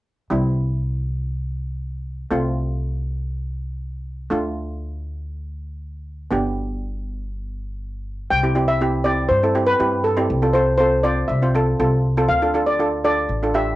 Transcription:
0.30 2.27 C2 medium
0.30 2.27 G3 medium
0.30 2.27 C4 soft
0.30 2.28 E4 medium
2.31 4.27 C2 medium
2.31 4.27 A3 medium
2.31 4.27 C4 medium
2.31 4.28 F4 medium
4.30 6.27 D2 medium
4.30 6.27 A3 medium
4.30 6.27 D4 medium
4.30 6.27 F4 medium
6.31 8.27 G1 medium
6.31 8.26 B3 medium
6.31 8.27 D4 medium
6.31 8.27 G4 medium
8.30 9.27 C2 medium
8.30 8.66 G5 medium
8.43 8.51 C4 medium
8.43 8.51 E4 soft
8.43 8.51 G4 medium
8.55 8.71 C4 medium
8.55 8.71 E4 medium
8.55 8.71 G4 medium
8.68 9.06 E5 medium
8.81 8.96 C4 medium
8.81 8.96 E4 medium
8.81 8.96 G4 medium
9.04 9.28 C4 medium
9.04 9.28 E4 medium
9.04 9.28 G4 medium
9.04 9.31 D5 medium
9.29 9.77 G2 medium
9.29 9.68 C5 medium
9.43 9.50 C4 medium
9.43 9.51 E4 medium
9.43 9.51 A4 medium
9.55 9.70 C4 medium
9.55 9.71 E4 medium
9.55 9.71 G4 medium
9.67 10.06 B4 medium
9.80 10.27 G2 medium
9.80 10.02 C4 medium
9.80 10.03 E4 medium
9.80 10.03 G4 medium
10.04 10.56 A4 medium
10.17 10.30 C4 medium
10.17 10.30 E4 medium
10.17 10.30 G4 medium
10.30 11.26 C2 medium
10.42 10.50 C4 medium
10.42 10.50 F4 medium
10.42 10.50 A4 medium
10.53 10.70 C4 medium
10.53 10.70 F4 medium
10.53 10.70 A4 medium
10.53 10.76 C5 medium
10.78 10.95 C4 medium
10.78 10.95 F4 medium
10.78 10.95 A4 medium
10.78 11.02 C5 medium
11.03 11.27 C4 medium
11.03 11.27 F4 medium
11.03 11.27 C5 medium
11.03 11.27 D5 medium
11.28 11.76 C2 medium
11.28 12.00 E5 medium
11.42 11.50 C4 medium
11.42 11.50 F4 medium
11.42 11.50 C5 medium
11.55 11.70 C4 medium
11.55 11.70 F4 medium
11.55 11.70 A4 medium
11.80 12.26 C2 medium
11.80 12.02 C4 medium
11.80 12.02 F4 medium
11.80 12.02 A4 medium
12.17 12.29 C4 medium
12.17 12.30 F4 medium
12.17 12.30 A4 medium
12.29 13.25 D2 medium
12.29 12.68 F5 medium
12.42 12.49 D4 medium
12.42 12.50 F4 medium
12.42 12.50 A4 medium
12.54 12.69 D4 medium
12.54 12.70 F4 medium
12.54 12.70 A4 medium
12.67 13.03 D5 medium
12.79 12.95 D4 medium
12.79 12.95 F4 medium
12.79 12.95 A4 medium
13.05 13.27 D4 medium
13.05 13.27 F4 medium
13.05 13.27 A4 medium
13.05 13.56 D5 medium
13.29 13.75 A1 medium
13.43 13.50 D4 medium
13.43 13.50 F4 medium
13.43 13.50 A4 medium
13.54 13.69 D4 medium
13.54 13.69 F4 medium
13.54 13.69 G4 medium
13.54 13.76 E5 medium

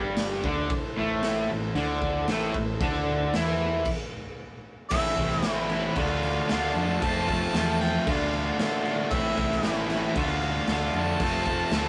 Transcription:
0.00 0.40 G1 loud
0.00 0.43 G2 loud
0.00 0.44 G3 loud
0.17 snare loud
0.17 crash medium
0.44 0.68 D2 loud
0.44 0.70 D3 loud
0.44 0.70 D4 loud
0.44 kick medium
0.69 3.82 E4 medium
0.69 3.83 A4 medium
0.69 3.84 C5 medium
0.69 kick loud
0.69 crash medium
0.97 1.46 A1 loud
0.97 1.49 A2 medium
0.97 1.50 A3 loud
1.23 snare loud
1.23 crash medium
1.50 1.74 A1 medium
1.50 1.71 A2 medium
1.74 2.24 D2 medium
1.74 2.28 D3 loud
1.74 2.29 D4 loud
1.74 crash medium
2.02 kick medium
2.28 2.53 A1 loud
2.28 2.54 A2 loud
2.28 2.55 A3 loud
2.28 snare loud
2.28 crash medium
2.54 2.79 A1 medium
2.54 2.77 A2 medium
2.54 kick medium
2.80 3.30 D2 loud
2.80 3.33 D3 loud
2.80 3.34 D4 loud
2.80 kick loud
2.80 crash medium
3.34 3.83 E2 loud
3.34 3.87 E3 loud
3.34 3.87 E4 loud
3.34 snare loud
3.34 crash medium
3.85 kick loud
3.85 crash loud
4.90 5.13 A1 loud
4.90 5.41 A2 loud
4.90 5.43 E3 loud
4.90 5.21 A3 loud
4.90 5.66 E5 loud
4.90 kick loud
4.90 crash loud
4.90 crash medium
4.94 5.18 C4 loud
4.94 5.15 E4 loud
5.17 5.39 C2 medium
5.17 5.45 C4 medium
5.17 5.47 E4 medium
5.17 kick medium
5.17 crash medium
5.21 5.45 A3 medium
5.30 snare soft
5.42 5.87 A1 medium
5.42 5.94 A2 loud
5.42 5.95 E3 medium
5.42 5.74 A3 loud
5.42 snare loud
5.42 crash medium
5.47 5.72 C4 loud
5.47 5.69 E4 loud
5.69 5.97 C4 medium
5.69 5.95 E4 medium
5.69 crash medium
5.75 5.97 A3 medium
5.95 6.39 D2 loud
5.95 6.48 D3 loud
5.95 6.51 A3 loud
5.95 6.52 D4 loud
5.95 6.76 F5 loud
5.95 kick loud
5.95 crash loud
6.00 6.53 F4 loud
6.23 crash medium
6.49 6.71 D2 medium
6.49 7.00 D3 medium
6.49 6.79 A3 medium
6.49 6.77 D4 medium
6.49 snare loud
6.49 crash medium
6.54 6.74 F4 medium
6.74 6.97 F2 loud
6.74 7.01 D4 medium
6.74 7.00 F4 medium
6.74 7.82 A5 loud
6.74 crash medium
6.80 7.02 A3 medium
7.01 7.44 F1 loud
7.01 7.53 F3 loud
7.01 7.32 A3 loud
7.01 7.29 C4 loud
7.01 kick loud
7.01 crash medium
7.06 7.26 F4 loud
7.28 7.56 C4 medium
7.28 7.57 F4 medium
7.28 kick medium
7.28 crash medium
7.32 7.55 A3 medium
7.41 snare soft
7.54 7.96 E2 medium
7.54 8.05 F3 loud
7.54 7.85 A3 loud
7.54 7.82 C4 loud
7.54 snare loud
7.54 crash medium
7.58 7.79 F4 loud
7.81 8.06 C4 medium
7.81 8.05 F4 medium
7.81 8.06 G5 loud
7.81 snare soft
7.81 crash medium
7.85 8.09 A3 medium
8.07 8.49 D2 loud
8.07 8.58 D3 loud
8.07 8.61 A3 loud
8.07 8.62 D4 loud
8.07 8.81 F5 medium
8.07 kick loud
8.07 crash medium
8.12 8.63 F4 loud
8.33 crash medium
8.59 9.02 A2 medium
8.59 9.10 D3 medium
8.59 8.90 A3 medium
8.59 snare loud
8.59 crash medium
8.63 8.87 D4 medium
8.63 8.84 F4 medium
8.85 9.11 D4 medium
8.85 9.10 F4 medium
8.85 crash medium
8.90 9.14 A3 medium
9.11 9.32 A1 loud
9.11 9.61 A2 loud
9.11 9.64 E3 loud
9.11 9.41 A3 loud
9.11 9.85 E5 loud
9.11 kick loud
9.11 crash medium
9.15 9.39 C4 loud
9.15 9.36 E4 loud
9.37 9.59 C2 medium
9.37 9.65 C4 medium
9.37 9.67 E4 medium
9.37 kick medium
9.37 crash medium
9.42 9.65 A3 medium
9.52 snare soft
9.63 10.06 A1 loud
9.63 10.14 A2 loud
9.63 10.15 E3 loud
9.63 9.94 A3 loud
9.63 9.91 C4 loud
9.63 snare loud
9.63 crash medium
9.68 9.89 E4 loud
9.90 10.15 C4 medium
9.90 10.14 E4 medium
9.90 snare soft
9.90 crash medium
9.94 10.17 A3 medium
10.15 10.58 D2 loud
10.15 10.67 D3 loud
10.15 10.70 A3 loud
10.15 10.97 F5 loud
10.15 kick loud
10.15 crash medium
10.19 10.71 D4 loud
10.19 10.72 F4 loud
10.42 crash medium
10.67 10.88 D2 loud
10.67 11.18 D3 medium
10.67 10.99 A3 medium
10.67 snare loud
10.67 crash medium
10.72 10.96 D4 medium
10.72 10.93 F4 medium
10.94 11.15 F2 loud
10.94 11.20 D4 medium
10.94 11.19 F4 medium
10.94 11.89 A5 loud
10.94 crash medium
10.99 11.21 A3 medium
11.20 11.62 F1 loud
11.20 11.72 F3 loud
11.20 11.51 A3 loud
11.20 kick loud
11.20 crash loud
11.24 11.48 C4 medium
11.24 11.45 F4 loud
11.45 11.76 F4 medium
11.45 kick medium
11.45 crash medium
11.50 11.75 A3 medium
11.50 11.75 C4 medium
11.71 11.89 D2 medium
11.71 11.89 F3 medium
11.71 11.89 A3 loud
11.71 snare loud
11.71 crash medium
11.76 11.89 C4 loud
11.76 11.89 F4 loud

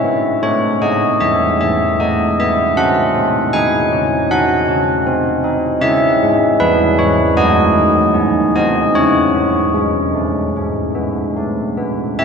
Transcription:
0.00 0.36 B3 soft
0.00 0.42 C#5 soft
0.00 0.41 E5 medium
0.43 0.75 A3 medium
0.43 0.81 C#5 medium
0.82 1.14 G#3 soft
0.82 1.20 D#5 medium
1.20 1.52 E3 medium
1.20 1.59 E5 medium
1.61 1.92 G#3 soft
1.61 1.98 E5 medium
2.00 2.31 A3 soft
2.00 2.37 D#5 medium
2.40 2.70 B3 soft
2.40 2.76 E5 medium
2.77 3.08 C#4 soft
2.77 5.79 C5 soft
2.77 3.50 F#5 medium
3.15 3.46 C4 soft
3.53 3.84 D#4 medium
3.53 4.27 G#5 medium
3.92 4.23 C#4 medium
4.31 4.61 D#4 medium
4.31 5.41 F#5 medium
4.68 4.99 C#4 medium
5.07 5.37 C4 medium
5.44 5.75 D#4 medium
5.81 6.12 C#4 medium
5.81 7.31 G#4 soft
5.81 6.55 E5 medium
6.23 6.52 G#3 medium
6.60 6.91 E3 medium
6.60 6.96 B4 medium
6.99 7.29 G#3 medium
6.99 7.35 C#5 medium
7.37 7.67 F#3 medium
7.37 8.10 A4 soft
7.37 8.51 D#5 loud
7.74 8.06 D#3 medium
8.14 8.46 G#3 medium
8.14 8.91 G#4 soft
8.56 8.88 C4 medium
8.56 8.94 D#5 medium
8.95 9.28 C#4 medium
8.95 12.15 G#4 soft
8.95 11.33 C#5 medium
9.35 9.67 B3 soft
9.74 10.07 G#3 medium
10.14 10.47 A3 soft
10.56 10.89 G#3 soft
10.95 11.28 B3 soft
11.37 11.70 A3 soft
11.77 12.10 B3 soft
12.19 12.25 C#4 medium
12.19 12.25 E5 medium

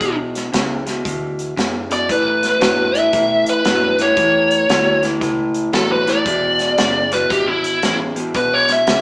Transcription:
0.00 0.52 B1 medium
0.00 0.49 E2 medium
0.00 0.49 B2 medium
0.00 0.16 G#4 loud
0.00 kick loud
0.00 closed hi-hat medium
0.35 snare soft
0.35 closed hi-hat medium
0.52 1.04 C#2 medium
0.52 0.83 E2 medium
0.52 0.83 C#3 medium
0.52 snare loud
0.52 closed hi-hat medium
0.86 1.03 E2 medium
0.86 1.03 B2 medium
0.86 snare soft
0.86 closed hi-hat medium
1.05 1.56 D2 medium
1.05 1.53 E2 medium
1.05 1.53 B2 medium
1.05 kick loud
1.05 closed hi-hat medium
1.39 closed hi-hat medium
1.57 1.87 E2 medium
1.57 2.08 F#2 medium
1.57 1.87 C#3 medium
1.57 kick medium
1.57 snare medium
1.57 closed hi-hat medium
1.90 2.07 E2 medium
1.90 2.08 B2 medium
1.90 2.11 D5 medium
1.90 closed hi-hat medium
2.09 2.57 A2 medium
2.09 2.60 A2 medium
2.09 2.58 E3 medium
2.09 2.61 B4 medium
2.09 kick loud
2.09 closed hi-hat medium
2.43 snare soft
2.43 closed hi-hat medium
2.60 3.12 G2 medium
2.60 2.91 A2 medium
2.60 2.91 F#3 medium
2.60 2.98 B4 medium
2.60 snare loud
2.60 closed hi-hat medium
2.93 3.11 A2 medium
2.93 3.12 E3 medium
2.93 closed hi-hat medium
2.98 3.47 E5 medium
3.13 3.62 A2 medium
3.13 3.44 B2 medium
3.13 3.62 E3 medium
3.13 kick loud
3.13 snare soft
3.13 closed hi-hat medium
3.46 3.99 B4 medium
3.46 muted fingered electric bass stroke soft
3.46 closed hi-hat medium
3.65 4.16 G2 medium
3.65 3.95 A2 medium
3.65 3.95 F#3 medium
3.65 snare loud
3.65 closed hi-hat medium
3.98 4.15 A2 medium
3.98 4.16 E3 medium
3.98 5.02 C#5 medium
3.98 snare soft
3.98 closed hi-hat medium
4.17 4.68 E2 medium
4.17 4.66 A2 medium
4.17 4.66 E3 loud
4.17 kick loud
4.17 closed hi-hat medium
4.51 closed hi-hat medium
4.69 5.20 D2 medium
4.69 4.99 A2 medium
4.69 5.00 F#3 medium
4.69 snare loud
4.69 closed hi-hat medium
5.02 5.20 A2 medium
5.02 5.20 E3 medium
5.02 snare soft
5.02 closed hi-hat medium
5.21 5.72 C#2 medium
5.21 5.70 A2 medium
5.21 5.70 E3 medium
5.21 kick loud
5.21 snare soft
5.21 closed hi-hat medium
5.54 closed hi-hat medium
5.73 6.24 A1 medium
5.73 6.03 A2 medium
5.73 6.03 F#3 loud
5.73 5.91 A4 loud
5.73 kick medium
5.73 snare loud
5.73 closed hi-hat medium
5.92 6.08 B4 medium
6.06 6.24 A2 medium
6.06 6.24 E3 medium
6.06 7.10 D5 medium
6.06 snare soft
6.06 closed hi-hat medium
6.26 6.77 E1 medium
6.26 6.74 E2 medium
6.26 6.75 B2 loud
6.26 kick loud
6.26 closed hi-hat medium
6.59 snare soft
6.59 closed hi-hat medium
6.78 7.29 F#1 medium
6.78 7.08 E2 medium
6.78 7.08 C#3 medium
6.78 snare loud
6.78 closed hi-hat medium
7.11 7.28 E2 medium
7.11 7.28 B2 medium
7.11 7.30 B4 medium
7.11 snare soft
7.11 closed hi-hat medium
7.30 7.81 G#1 medium
7.30 7.78 E2 medium
7.30 7.79 B2 medium
7.30 7.47 G4 medium
7.30 kick loud
7.30 snare soft
7.30 closed hi-hat medium
7.47 7.98 E4 medium
7.64 closed hi-hat medium
7.83 8.34 A1 medium
7.83 8.13 E2 medium
7.83 8.13 C#3 medium
7.83 snare medium
7.83 closed hi-hat medium
8.16 8.33 E2 medium
8.16 8.33 B2 medium
8.16 closed hi-hat medium
8.34 8.85 B1 medium
8.34 8.83 E2 medium
8.34 8.84 B2 medium
8.34 8.54 B4 medium
8.34 kick loud
8.34 closed hi-hat medium
8.54 8.70 C#5 medium
8.68 9.01 E5 medium
8.68 snare soft
8.68 closed hi-hat medium
8.87 9.01 C#2 medium
8.87 9.01 E2 medium
8.87 9.01 C#3 medium
8.87 snare loud
8.87 closed hi-hat medium

